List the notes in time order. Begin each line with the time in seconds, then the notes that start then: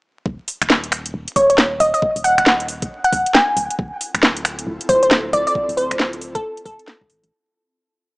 0.26 D#1, kick
0.48 open hi-hat
0.62 D#1, finger snap, closed hi-hat
0.70 snare
0.84 closed hi-hat
0.92 finger snap, open hi-hat
1.06 closed hi-hat
1.14 D#1
1.28 closed hi-hat
1.36 D#1 C#5, kick, open hi-hat
1.50 C#5, closed hi-hat
1.58 snare
1.80 D#1 D#5, open hi-hat
1.94 D#5, open hi-hat
2.02 kick
2.16 D#1, open hi-hat
2.24 F#5, open hi-hat
2.38 D#1 F#5, finger snap, closed hi-hat
2.46 snare
2.60 closed hi-hat
2.68 open hi-hat
2.82 kick, closed hi-hat
3.04 F#5, closed hi-hat
3.13 D#1, kick, open hi-hat
3.26 closed hi-hat
3.35 G#5, snare
3.57 D1, open hi-hat
3.70 closed hi-hat
3.79 D1 C4 E4 F4 A4, kick
4.01 open hi-hat
4.14 D1, finger snap, closed hi-hat
4.23 snare
4.37 closed hi-hat
4.45 finger snap, open hi-hat
4.59 closed hi-hat
4.67 D1
4.81 closed hi-hat
4.89 D1 C5, kick, open hi-hat
5.03 C5, closed hi-hat
5.11 snare
5.33 D1 D5, open hi-hat
5.47 D5, open hi-hat
5.55 kick
5.69 D1, open hi-hat
5.77 C5, open hi-hat
5.91 D1, finger snap, closed hi-hat
5.99 snare
6.13 closed hi-hat
6.21 open hi-hat
6.35 A4, kick, closed hi-hat
6.57 closed hi-hat
6.65 D1 A4, kick, open hi-hat
6.79 closed hi-hat
6.88 snare
7.01 D1, kick
7.10 A1, open hi-hat
7.23 A1, closed hi-hat